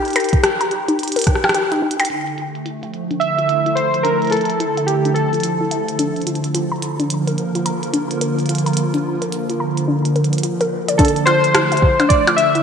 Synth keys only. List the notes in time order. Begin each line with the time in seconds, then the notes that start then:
Already playing: G4
3.20 E5
3.75 C5
4.03 A#4
4.31 A4
4.87 G4
5.14 A4
10.98 A4
11.26 C5
12.09 D5
12.36 E5